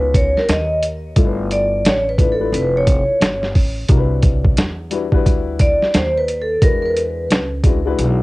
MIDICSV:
0, 0, Header, 1, 6, 480
1, 0, Start_track
1, 0, Tempo, 681818
1, 821, Time_signature, 4, 2, 24, 8
1, 5793, End_track
2, 0, Start_track
2, 0, Title_t, "Vibraphone"
2, 0, Program_c, 0, 11
2, 0, Note_on_c, 0, 71, 101
2, 112, Note_off_c, 0, 71, 0
2, 112, Note_on_c, 0, 73, 90
2, 258, Note_off_c, 0, 73, 0
2, 261, Note_on_c, 0, 70, 82
2, 350, Note_off_c, 0, 70, 0
2, 355, Note_on_c, 0, 75, 105
2, 571, Note_off_c, 0, 75, 0
2, 1073, Note_on_c, 0, 74, 89
2, 1314, Note_off_c, 0, 74, 0
2, 1314, Note_on_c, 0, 73, 91
2, 1472, Note_off_c, 0, 73, 0
2, 1472, Note_on_c, 0, 71, 93
2, 1631, Note_off_c, 0, 71, 0
2, 1633, Note_on_c, 0, 69, 72
2, 1792, Note_off_c, 0, 69, 0
2, 1795, Note_on_c, 0, 71, 96
2, 1952, Note_on_c, 0, 73, 89
2, 1953, Note_off_c, 0, 71, 0
2, 2399, Note_off_c, 0, 73, 0
2, 3950, Note_on_c, 0, 74, 106
2, 4183, Note_on_c, 0, 72, 100
2, 4193, Note_off_c, 0, 74, 0
2, 4347, Note_off_c, 0, 72, 0
2, 4348, Note_on_c, 0, 71, 93
2, 4509, Note_off_c, 0, 71, 0
2, 4517, Note_on_c, 0, 69, 84
2, 4658, Note_off_c, 0, 69, 0
2, 4667, Note_on_c, 0, 70, 100
2, 4795, Note_off_c, 0, 70, 0
2, 4803, Note_on_c, 0, 70, 66
2, 4824, Note_off_c, 0, 70, 0
2, 4826, Note_on_c, 0, 71, 76
2, 5276, Note_off_c, 0, 71, 0
2, 5793, End_track
3, 0, Start_track
3, 0, Title_t, "Grand piano"
3, 0, Program_c, 1, 0
3, 0, Note_on_c, 1, 59, 76
3, 0, Note_on_c, 1, 61, 70
3, 0, Note_on_c, 1, 63, 68
3, 0, Note_on_c, 1, 66, 70
3, 0, Note_on_c, 1, 71, 76
3, 345, Note_off_c, 1, 59, 0
3, 347, Note_off_c, 1, 61, 0
3, 348, Note_off_c, 1, 63, 0
3, 349, Note_off_c, 1, 66, 0
3, 351, Note_off_c, 1, 71, 0
3, 814, Note_on_c, 1, 57, 69
3, 817, Note_on_c, 1, 62, 73
3, 820, Note_on_c, 1, 64, 75
3, 825, Note_on_c, 1, 65, 74
3, 828, Note_on_c, 1, 69, 72
3, 876, Note_on_c, 1, 71, 81
3, 881, Note_off_c, 1, 69, 0
3, 1278, Note_off_c, 1, 57, 0
3, 1280, Note_off_c, 1, 62, 0
3, 1281, Note_off_c, 1, 64, 0
3, 1284, Note_off_c, 1, 65, 0
3, 1309, Note_off_c, 1, 71, 0
3, 1537, Note_on_c, 1, 57, 70
3, 1540, Note_on_c, 1, 62, 75
3, 1544, Note_on_c, 1, 64, 64
3, 1547, Note_on_c, 1, 65, 64
3, 1552, Note_on_c, 1, 71, 80
3, 1632, Note_off_c, 1, 57, 0
3, 1633, Note_off_c, 1, 62, 0
3, 1635, Note_off_c, 1, 64, 0
3, 1637, Note_off_c, 1, 65, 0
3, 1640, Note_off_c, 1, 71, 0
3, 1682, Note_on_c, 1, 57, 75
3, 1687, Note_on_c, 1, 62, 70
3, 1688, Note_on_c, 1, 64, 69
3, 1692, Note_on_c, 1, 65, 67
3, 1696, Note_on_c, 1, 71, 87
3, 2266, Note_off_c, 1, 57, 0
3, 2268, Note_off_c, 1, 62, 0
3, 2269, Note_off_c, 1, 64, 0
3, 2271, Note_off_c, 1, 65, 0
3, 2273, Note_off_c, 1, 71, 0
3, 2736, Note_on_c, 1, 55, 73
3, 2742, Note_on_c, 1, 62, 72
3, 2742, Note_on_c, 1, 64, 71
3, 2748, Note_on_c, 1, 66, 68
3, 2750, Note_on_c, 1, 70, 78
3, 2797, Note_on_c, 1, 71, 92
3, 2802, Note_off_c, 1, 70, 0
3, 3199, Note_off_c, 1, 55, 0
3, 3202, Note_off_c, 1, 62, 0
3, 3202, Note_off_c, 1, 64, 0
3, 3205, Note_off_c, 1, 66, 0
3, 3230, Note_off_c, 1, 71, 0
3, 3452, Note_on_c, 1, 55, 87
3, 3458, Note_on_c, 1, 62, 79
3, 3461, Note_on_c, 1, 64, 88
3, 3464, Note_on_c, 1, 66, 86
3, 3468, Note_on_c, 1, 71, 93
3, 3550, Note_off_c, 1, 55, 0
3, 3553, Note_off_c, 1, 62, 0
3, 3554, Note_off_c, 1, 64, 0
3, 3556, Note_off_c, 1, 66, 0
3, 3558, Note_off_c, 1, 71, 0
3, 3605, Note_on_c, 1, 55, 92
3, 3606, Note_on_c, 1, 62, 89
3, 3611, Note_on_c, 1, 64, 94
3, 3614, Note_on_c, 1, 66, 89
3, 3619, Note_on_c, 1, 71, 101
3, 4187, Note_off_c, 1, 55, 0
3, 4188, Note_off_c, 1, 62, 0
3, 4191, Note_off_c, 1, 64, 0
3, 4192, Note_off_c, 1, 66, 0
3, 4195, Note_off_c, 1, 71, 0
3, 4656, Note_on_c, 1, 56, 72
3, 4659, Note_on_c, 1, 62, 66
3, 4664, Note_on_c, 1, 64, 59
3, 4667, Note_on_c, 1, 66, 61
3, 4670, Note_on_c, 1, 71, 74
3, 5119, Note_off_c, 1, 56, 0
3, 5121, Note_off_c, 1, 62, 0
3, 5123, Note_off_c, 1, 64, 0
3, 5124, Note_off_c, 1, 66, 0
3, 5126, Note_off_c, 1, 71, 0
3, 5379, Note_on_c, 1, 56, 79
3, 5384, Note_on_c, 1, 62, 69
3, 5386, Note_on_c, 1, 64, 77
3, 5390, Note_on_c, 1, 66, 73
3, 5396, Note_on_c, 1, 71, 74
3, 5473, Note_off_c, 1, 56, 0
3, 5475, Note_off_c, 1, 62, 0
3, 5477, Note_off_c, 1, 64, 0
3, 5478, Note_off_c, 1, 66, 0
3, 5482, Note_off_c, 1, 71, 0
3, 5527, Note_on_c, 1, 56, 94
3, 5530, Note_on_c, 1, 62, 82
3, 5533, Note_on_c, 1, 64, 86
3, 5536, Note_on_c, 1, 66, 87
3, 5540, Note_on_c, 1, 71, 100
3, 5793, Note_off_c, 1, 56, 0
3, 5793, Note_off_c, 1, 62, 0
3, 5793, Note_off_c, 1, 64, 0
3, 5793, Note_off_c, 1, 66, 0
3, 5793, Note_off_c, 1, 71, 0
3, 5793, End_track
4, 0, Start_track
4, 0, Title_t, "Upright bass"
4, 0, Program_c, 2, 32
4, 0, Note_on_c, 2, 37, 102
4, 230, Note_off_c, 2, 37, 0
4, 341, Note_on_c, 2, 39, 87
4, 797, Note_off_c, 2, 39, 0
4, 818, Note_on_c, 2, 31, 99
4, 1275, Note_off_c, 2, 31, 0
4, 1302, Note_on_c, 2, 33, 85
4, 1757, Note_off_c, 2, 33, 0
4, 1778, Note_on_c, 2, 29, 102
4, 2147, Note_off_c, 2, 29, 0
4, 2257, Note_on_c, 2, 31, 80
4, 2487, Note_off_c, 2, 31, 0
4, 2503, Note_on_c, 2, 33, 76
4, 2730, Note_off_c, 2, 33, 0
4, 2740, Note_on_c, 2, 36, 108
4, 3197, Note_off_c, 2, 36, 0
4, 3221, Note_on_c, 2, 40, 89
4, 3677, Note_off_c, 2, 40, 0
4, 3701, Note_on_c, 2, 38, 94
4, 4069, Note_off_c, 2, 38, 0
4, 4185, Note_on_c, 2, 39, 91
4, 4639, Note_off_c, 2, 39, 0
4, 4660, Note_on_c, 2, 40, 94
4, 5116, Note_off_c, 2, 40, 0
4, 5143, Note_on_c, 2, 37, 86
4, 5598, Note_off_c, 2, 37, 0
4, 5623, Note_on_c, 2, 35, 99
4, 5793, Note_off_c, 2, 35, 0
4, 5793, End_track
5, 0, Start_track
5, 0, Title_t, "Muted upright bass strokes"
5, 254, Note_on_c, 9, 29, 46
5, 324, Note_off_c, 9, 29, 0
5, 2169, Note_on_c, 9, 29, 51
5, 2240, Note_off_c, 9, 29, 0
5, 4094, Note_on_c, 9, 29, 52
5, 4164, Note_off_c, 9, 29, 0
5, 5793, End_track
6, 0, Start_track
6, 0, Title_t, "Drums"
6, 100, Note_on_c, 9, 36, 95
6, 101, Note_on_c, 9, 42, 78
6, 171, Note_off_c, 9, 36, 0
6, 172, Note_off_c, 9, 42, 0
6, 263, Note_on_c, 9, 38, 31
6, 334, Note_off_c, 9, 38, 0
6, 342, Note_on_c, 9, 42, 85
6, 347, Note_on_c, 9, 38, 75
6, 412, Note_off_c, 9, 42, 0
6, 417, Note_off_c, 9, 38, 0
6, 581, Note_on_c, 9, 42, 78
6, 652, Note_off_c, 9, 42, 0
6, 817, Note_on_c, 9, 42, 79
6, 819, Note_on_c, 9, 36, 116
6, 887, Note_off_c, 9, 42, 0
6, 889, Note_off_c, 9, 36, 0
6, 1062, Note_on_c, 9, 42, 68
6, 1132, Note_off_c, 9, 42, 0
6, 1303, Note_on_c, 9, 42, 84
6, 1312, Note_on_c, 9, 38, 115
6, 1373, Note_off_c, 9, 42, 0
6, 1382, Note_off_c, 9, 38, 0
6, 1536, Note_on_c, 9, 36, 92
6, 1539, Note_on_c, 9, 42, 68
6, 1607, Note_off_c, 9, 36, 0
6, 1610, Note_off_c, 9, 42, 0
6, 1788, Note_on_c, 9, 42, 80
6, 1858, Note_off_c, 9, 42, 0
6, 2021, Note_on_c, 9, 36, 91
6, 2021, Note_on_c, 9, 42, 80
6, 2091, Note_off_c, 9, 36, 0
6, 2091, Note_off_c, 9, 42, 0
6, 2263, Note_on_c, 9, 42, 79
6, 2268, Note_on_c, 9, 38, 98
6, 2333, Note_off_c, 9, 42, 0
6, 2338, Note_off_c, 9, 38, 0
6, 2415, Note_on_c, 9, 38, 29
6, 2485, Note_off_c, 9, 38, 0
6, 2501, Note_on_c, 9, 46, 48
6, 2502, Note_on_c, 9, 36, 82
6, 2571, Note_off_c, 9, 46, 0
6, 2572, Note_off_c, 9, 36, 0
6, 2735, Note_on_c, 9, 42, 75
6, 2739, Note_on_c, 9, 36, 112
6, 2806, Note_off_c, 9, 42, 0
6, 2810, Note_off_c, 9, 36, 0
6, 2975, Note_on_c, 9, 42, 72
6, 2978, Note_on_c, 9, 36, 88
6, 3045, Note_off_c, 9, 42, 0
6, 3048, Note_off_c, 9, 36, 0
6, 3130, Note_on_c, 9, 36, 93
6, 3200, Note_off_c, 9, 36, 0
6, 3218, Note_on_c, 9, 42, 100
6, 3227, Note_on_c, 9, 38, 118
6, 3288, Note_off_c, 9, 42, 0
6, 3297, Note_off_c, 9, 38, 0
6, 3456, Note_on_c, 9, 42, 75
6, 3526, Note_off_c, 9, 42, 0
6, 3605, Note_on_c, 9, 36, 86
6, 3675, Note_off_c, 9, 36, 0
6, 3703, Note_on_c, 9, 36, 95
6, 3705, Note_on_c, 9, 42, 91
6, 3773, Note_off_c, 9, 36, 0
6, 3775, Note_off_c, 9, 42, 0
6, 3938, Note_on_c, 9, 42, 86
6, 3940, Note_on_c, 9, 36, 92
6, 4008, Note_off_c, 9, 42, 0
6, 4011, Note_off_c, 9, 36, 0
6, 4101, Note_on_c, 9, 38, 33
6, 4171, Note_off_c, 9, 38, 0
6, 4182, Note_on_c, 9, 42, 84
6, 4187, Note_on_c, 9, 38, 88
6, 4252, Note_off_c, 9, 42, 0
6, 4257, Note_off_c, 9, 38, 0
6, 4424, Note_on_c, 9, 42, 62
6, 4494, Note_off_c, 9, 42, 0
6, 4660, Note_on_c, 9, 36, 112
6, 4660, Note_on_c, 9, 42, 82
6, 4730, Note_off_c, 9, 42, 0
6, 4731, Note_off_c, 9, 36, 0
6, 4904, Note_on_c, 9, 42, 64
6, 4974, Note_off_c, 9, 42, 0
6, 5143, Note_on_c, 9, 42, 93
6, 5152, Note_on_c, 9, 38, 122
6, 5213, Note_off_c, 9, 42, 0
6, 5222, Note_off_c, 9, 38, 0
6, 5377, Note_on_c, 9, 36, 95
6, 5377, Note_on_c, 9, 42, 71
6, 5447, Note_off_c, 9, 36, 0
6, 5448, Note_off_c, 9, 42, 0
6, 5623, Note_on_c, 9, 42, 89
6, 5693, Note_off_c, 9, 42, 0
6, 5793, End_track
0, 0, End_of_file